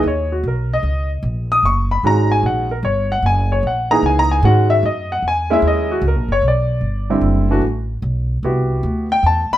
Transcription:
0.03 D#2
0.07 C#5
0.32 F#4
0.43 B1
0.48 A#4
0.73 D#5
0.83 C#2
1.23 A#1
1.52 D#6
1.63 F#1 C#6
1.91 B5
2.03 G#1 D#3 G#3 C#4 F#4 A#5
2.32 G#5
2.43 A#1 F#5
2.71 A#4
2.83 G1 C#5
3.12 F#5
3.23 F#1 G#5
3.52 C#5
3.63 A#1
3.67 F#5
3.91 E3 A#3 D#4 G#4 A#5
4.03 C#2 G#5
4.19 A#5
4.31 G#5
4.42 G#2 D#3 G#3 C#4 F#4 F#5
4.70 E5
4.83 F#2 D#5
5.12 F#5
5.22 E2
5.28 G#5
5.50 G#3 A#3 C#4 E4 E5
5.62 D#2
5.68 D#5
5.91 F#4
6.02 C#2
6.08 A#4
6.16 A#1
6.28 F#1 C#5
6.42 B1
6.48 D5
6.81 G1
7.10 D3 G3 C4 E4
7.21 F#1
7.51 E3 A3 D4 F#4
7.62 A1
8.02 B1
8.43 C2 B3 E4 F#4 G4
8.83 D2
9.12 G5
9.23 E2 A5
9.51 B5, muted upright bass stroke

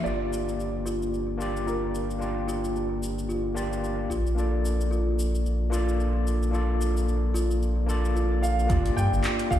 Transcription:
0.03 G1 A#3 D4 F4 G4 D5, shaker
0.07 D5
0.33 shaker
0.49 shaker
0.60 shaker
0.86 F4, shaker
1.02 shaker
1.14 shaker
1.37 A#3 D4 F4 G4, shaker
1.42 D5
1.56 shaker
1.67 F4 A#4, shaker
1.95 shaker
2.10 shaker
2.19 A#3 D4 F4 G4, shaker
2.23 D5
2.48 F4, shaker
2.64 shaker
2.76 shaker
3.03 shaker
3.18 shaker
3.29 F4, shaker
3.54 A#3 D4 F4 G4 D5, shaker
3.73 shaker
3.84 shaker
4.10 A#1 F4, shaker
4.27 shaker
4.35 A#3 D4 F4 A4, shaker
4.39 D5
4.65 shaker
4.81 shaker
4.91 F4, shaker
5.19 shaker
5.35 shaker
5.46 shaker
5.70 A#3 D4 F4 A4, shaker
5.74 D5
5.89 shaker
6.00 shaker
6.27 shaker
6.43 shaker
6.51 A#3 D4 F4 A4, shaker
6.55 D5
6.81 shaker
6.97 shaker
7.08 shaker
7.34 F4, shaker
7.51 shaker
7.63 shaker
7.86 A#3 D4 F4 A4, shaker
7.91 D5
8.05 shaker
8.16 F4, shaker
8.42 F4 F5, shaker
8.59 shaker
8.67 G1 A#3 D4 F4 G4, kick, closed hi-hat, shaker
8.71 D5
8.86 closed hi-hat, shaker
8.97 G2 G5, shaker
9.12 G1, shaker
9.24 clap, closed hi-hat, shaker
9.39 closed hi-hat
9.51 G1 F4 F5, kick, shaker

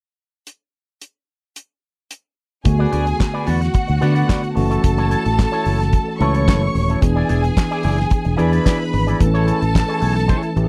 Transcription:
0.47 closed hi-hat
1.02 closed hi-hat
1.56 closed hi-hat
2.11 closed hi-hat
2.65 D2 D3 A3 B3 F#4 G#4 G#5, muted clean electric guitar stroke, kick, closed hi-hat
2.79 F#4 B4 D5
2.91 D2 F#4 B4 D5, closed hi-hat
3.07 muted clean electric guitar stroke, closed hi-hat
3.19 muted clean electric guitar stroke, kick, snare, clap, closed hi-hat
3.34 F#4 B4 D5
3.46 E2 F#4 B4 D5 F#5, open hi-hat
3.61 muted clean electric guitar stroke, snare, closed hi-hat
3.74 muted clean electric guitar stroke, kick, closed hi-hat
3.88 D2, muted clean electric guitar stroke, closed hi-hat
4.01 D3 A3 B3 F#4 B4 D5, closed hi-hat
4.15 F#4 B4 D5, closed hi-hat
4.28 F#4 B4 D5, kick, snare, clap, closed hi-hat
4.43 muted clean electric guitar stroke, closed hi-hat
4.55 F#1 E3 A3 C#4 F#4 A4 A5, muted clean electric guitar stroke, open hi-hat
4.69 E4 A4 C#5, closed hi-hat
4.83 F#1, muted clean electric guitar stroke, kick, closed hi-hat
4.98 E4 A4 C#5, closed hi-hat
5.10 E4 A4 C#5, closed hi-hat
5.25 A1, muted clean electric guitar stroke, closed hi-hat
5.38 muted clean electric guitar stroke, kick, snare, clap, closed hi-hat
5.52 E4 A4 C#5, closed hi-hat
5.65 F#1 E4 A4 C#5, open hi-hat
5.80 muted clean electric guitar stroke, snare, closed hi-hat
5.93 muted clean electric guitar stroke, kick, closed hi-hat
6.08 muted clean electric guitar stroke
6.20 C#2 E3 A3 C#4 E4 A4 C#5 C#6, closed hi-hat
6.35 E4 A4 C#5, closed hi-hat
6.47 F#1 E4 A4 C#5, kick, snare, clap, closed hi-hat
6.62 muted clean electric guitar stroke
6.75 D#1, muted clean electric guitar stroke, open hi-hat
6.89 E4 A4 C#5, closed hi-hat
7.01 E1 E3 B3 D4 G#4 G#5, muted clean electric guitar stroke, kick, closed hi-hat
7.16 E4 G#4 D5
7.29 E1 E4 G#4 D5, closed hi-hat
7.44 muted clean electric guitar stroke, closed hi-hat
7.57 muted clean electric guitar stroke, kick, snare, clap, closed hi-hat
7.71 E4 G#4 D5, closed hi-hat
7.83 F#1 E4 G#4 D5, open hi-hat
7.98 muted clean electric guitar stroke, snare, closed hi-hat
8.10 muted clean electric guitar stroke, kick, closed hi-hat
8.25 E1, muted clean electric guitar stroke, closed hi-hat
8.37 E2 E3 B3 D4 E4 G#4 B4 D5 B5, closed hi-hat
8.52 E4 G#4 D5, closed hi-hat
8.65 E4 G#4 D5, kick, snare, clap, closed hi-hat
8.80 muted clean electric guitar stroke
8.93 G#1, muted clean electric guitar stroke, open hi-hat
9.07 E4 G#4 D5, closed hi-hat
9.19 A1 E3 A3 B3 A4 A5, muted clean electric guitar stroke, kick, closed hi-hat
9.27 C#4
9.34 E4 G#4 C#5, closed hi-hat
9.47 E4 G#4 C#5, closed hi-hat
9.62 A1, muted clean electric guitar stroke, closed hi-hat
9.74 muted clean electric guitar stroke, kick, snare, clap, closed hi-hat
9.88 E4 G#4 C#5, closed hi-hat
10.01 B1 E4 G#4 C#5, open hi-hat
10.16 muted clean electric guitar stroke, snare, closed hi-hat
10.28 E4 G#4 C#5, kick, closed hi-hat
10.43 muted clean electric guitar stroke, closed hi-hat
10.56 A1 E3 A3 C#4 G4, muted clean electric guitar stroke, closed hi-hat
10.64 G#4

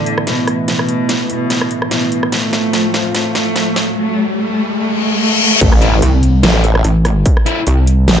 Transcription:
Already playing: A2 E3 B3 E4, riser
0.06 closed hi-hat
0.18 cross-stick
0.27 B2, snare, closed hi-hat
0.47 cross-stick, closed hi-hat
0.68 B2, snare, closed hi-hat
0.79 cross-stick
0.89 closed hi-hat
1.09 snare, closed hi-hat
1.30 B2, closed hi-hat
1.50 snare, closed hi-hat
1.61 cross-stick
1.71 closed hi-hat
1.82 cross-stick
1.91 B2, snare, closed hi-hat
2.12 closed hi-hat
2.23 cross-stick
2.32 A2 F3 A3 C4 F4, snare, closed hi-hat
2.53 snare, closed hi-hat
2.73 snare, closed hi-hat
2.94 snare, closed hi-hat
3.15 A3, snare, closed hi-hat
3.35 snare, closed hi-hat
3.56 snare, closed hi-hat
3.76 snare, closed hi-hat
3.97 A3
4.38 A3
4.79 A3, reverse cymbal
5.00 A3
5.20 A3
5.41 A3
5.61 A1, kick, closed hi-hat, crash, impact
5.72 cross-stick
5.82 E4 A4 C5, closed hi-hat
6.02 C2, closed hi-hat
6.23 closed hi-hat
6.43 A1 E4 A4 C5, snare, closed hi-hat
6.64 closed hi-hat
6.75 cross-stick
6.84 A1, closed hi-hat
7.05 cross-stick, closed hi-hat
7.26 kick, closed hi-hat
7.37 cross-stick
7.46 E4 A4 C5, closed hi-hat
7.67 C2, closed hi-hat
7.87 closed hi-hat
8.08 A1, snare, closed hi-hat

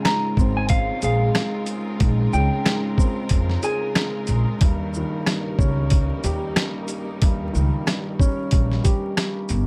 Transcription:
Already playing: G#2 C#3 G#3 C4 F4 A#4
0.05 G#2 A#5, cross-stick, snare, closed hi-hat
0.37 G#1 C4, kick, shaker
0.57 G#5
0.69 F5, kick, closed hi-hat
1.02 A#1 G#4 F5, closed hi-hat, shaker
1.35 cross-stick, snare, closed hi-hat
1.66 closed hi-hat, shaker
1.99 A#1 G#2, kick, closed hi-hat
2.33 C#2 C#3 G5, shaker
2.66 G#2, cross-stick, snare, closed hi-hat
2.97 C4, kick, shaker
3.29 F2, kick, closed hi-hat
3.50 snare
3.63 G#4 G#5, closed hi-hat, shaker
3.95 cross-stick, snare, closed hi-hat
4.27 A#1, closed hi-hat, shaker
4.61 D#2 G2 G3 A#3 D#4, kick, closed hi-hat
4.94 D#3, shaker
5.26 G2, cross-stick, snare, closed hi-hat
5.59 C#2 C#4, kick, shaker
5.90 kick, closed hi-hat
6.24 D#2 G4, closed hi-hat, shaker
6.56 cross-stick, snare, closed hi-hat
6.88 closed hi-hat, shaker
7.22 D#2 G2, kick, closed hi-hat
7.53 C#2 D#3, shaker
7.87 G2, cross-stick, snare, closed hi-hat
8.20 C#4, kick, shaker
8.51 A#1, kick, closed hi-hat
8.72 snare
8.84 G4, kick, closed hi-hat, shaker
9.17 cross-stick, snare, closed hi-hat
9.49 G1, closed hi-hat, shaker

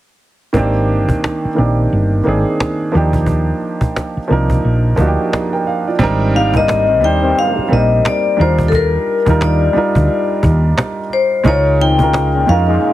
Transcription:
0.53 G#1 D#3 A#3 C4 D4, cajon bass
0.58 G4
0.89 cajon slap
1.09 cajon bass
1.24 cajon slap
1.45 muted fretless electric bass stroke
1.55 A#1 D#3 A#3 C4 D4, cajon slap
1.60 G4
1.90 G1, cajon slap
2.22 D#3 A#3, cajon slap
2.26 G#1 C4 D4 G#4
2.60 cajon slap
2.92 D#2 F3 A#3 D4 D#4, cajon slap
2.96 G4
3.13 cajon bass
3.26 cajon bass
3.61 cajon slap
3.81 cajon bass
3.96 cajon slap
4.17 muted fretless electric bass stroke
4.28 C2 F3 A#3 D4 D#4, cajon slap
4.32 A#4
4.50 cajon bass
4.62 A#1, cajon slap
4.96 D2 F3 A#3 D4 D#4, cajon bass
5.01 F#4
5.07 G4
5.33 G4 D#5, cajon slap
5.53 A#4 G5
5.64 F5, cajon slap
5.87 F4 D5
5.99 G#1 G3 C4 D4 D#4, cajon bass
6.03 A#4
6.33 C3 A#3 D#4 F5, cajon slap
6.53 G3 A#3 C4 D#4 D#5, cajon bass
6.58 A#4
6.68 cajon slap
6.87 G2 D#3 C4
7.01 D#2 G3 C4 D4 D#4 G5
7.05 C5
7.22 G2 D#3 C4
7.35 F5, cajon slap
7.58 muted fretless electric bass stroke
7.68 G3 A#3 C4, cajon slap
7.72 A#1 D#4 A#4 D#5
8.05 D5, cajon slap
8.37 D#2 G3 D4 D#4 F4, cajon slap
8.41 A#4 C5
8.59 cajon bass
8.68 A4, cajon bass
8.75 A#4
9.07 cajon slap
9.26 D#2 G3 D4 D#4 F4, cajon bass
9.30 A#4
9.41 D5, cajon slap
9.73 G3 D4 D#4 F4, muted fretless electric bass stroke, cajon slap
9.78 A#4
9.95 D2, cajon bass
10.08 cajon slap
10.43 D#2, cajon bass
10.78 cajon slap
11.10 C5, cajon slap
11.44 C#2 G#3 C#4 D#4 F4, cajon bass
11.48 A#4 C#5
11.78 D#3 C4 D#4 G5, cajon slap
11.98 G#3 C#4 D#4 F4, cajon bass
12.03 A#4
12.13 cajon slap
12.33 A#2 G#3 C#4
12.46 F2 G#3 C#4 D#4 F4 F5
12.51 A#4
12.67 A#2 G#3 D#4
12.81 cajon slap

